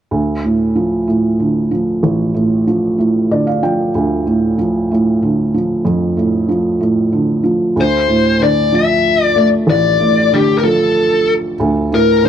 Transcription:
0.11 felt piano D2
0.44 felt piano A2
0.75 felt piano F3
1.08 felt piano A2
1.40 felt piano D3
1.71 felt piano F3
2.03 felt piano A1
2.34 felt piano A2
2.67 felt piano F3
2.98 felt piano A2
3.31 felt piano D3 D5
3.47 felt piano F5
3.63 felt piano F3 G5
3.95 felt piano D2
4.27 felt piano A2
4.58 felt piano F3
4.91 felt piano A2
5.22 felt piano D3
5.54 felt piano F3
5.85 felt piano F2
6.17 felt piano A2
6.49 felt piano F3
6.80 felt piano A2
7.12 felt piano D3
7.44 felt piano F3
7.76 felt piano D2
7.81 lead electric guitar C5
8.08 felt piano A2
8.40 felt piano D3, lead electric guitar D5
8.72 felt piano F3, lead electric guitar E5
9.24 lead electric guitar D5
9.36 felt piano A3, lead electric guitar D5
9.67 felt piano A1, lead electric guitar D5
10.00 felt piano A2
10.32 felt piano D3, lead electric guitar G4
10.58 lead electric guitar A#4
10.63 felt piano F3, lead electric guitar A4
11.60 felt piano D2
11.92 felt piano A2, lead electric guitar A#4
12.23 felt piano D3, lead electric guitar C5

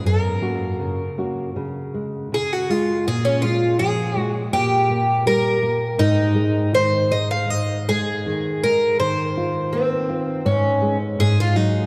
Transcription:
0.05 nylon-string guitar F#2, twelve-string acoustic guitar A#4
0.41 nylon-string guitar A#3 C#4 F#4
0.80 nylon-string guitar C#3
1.18 nylon-string guitar A#3 C#4 F#4
1.56 nylon-string guitar C#3
1.94 nylon-string guitar G#3
2.32 nylon-string guitar C#3, twelve-string acoustic guitar G#4
2.53 twelve-string acoustic guitar F#4
2.70 nylon-string guitar G#3, twelve-string acoustic guitar F4
3.07 nylon-string guitar A#2, twelve-string acoustic guitar G#4
3.25 twelve-string acoustic guitar C#4
3.42 nylon-string guitar G#3, twelve-string acoustic guitar F4
3.79 nylon-string guitar F3, twelve-string acoustic guitar G#4
4.16 nylon-string guitar G#3, twelve-string acoustic guitar F#4
4.53 nylon-string guitar A#2, twelve-string acoustic guitar G4
4.90 nylon-string guitar A#3
5.26 nylon-string guitar G3, twelve-string acoustic guitar A#4
5.63 nylon-string guitar A#3
5.98 nylon-string guitar G#2, twelve-string acoustic guitar D#4
6.35 nylon-string guitar G#3
6.73 nylon-string guitar D#3, twelve-string acoustic guitar C5
7.11 nylon-string guitar G#3, twelve-string acoustic guitar D#5
7.31 twelve-string acoustic guitar F5
7.49 nylon-string guitar G#2, twelve-string acoustic guitar D#5
7.88 nylon-string guitar G#3, twelve-string acoustic guitar G#4
8.26 nylon-string guitar D#3
8.63 nylon-string guitar G#3, twelve-string acoustic guitar A#4
9.00 nylon-string guitar D#3, twelve-string acoustic guitar C5
9.37 nylon-string guitar F4
9.73 nylon-string guitar A#3, twelve-string acoustic guitar C4
10.09 nylon-string guitar F4
10.45 nylon-string guitar G#2, twelve-string acoustic guitar C#4
10.82 nylon-string guitar G#3
11.19 nylon-string guitar G#2, twelve-string acoustic guitar G#4
11.40 twelve-string acoustic guitar F4
11.55 nylon-string guitar F#3, twelve-string acoustic guitar D#4

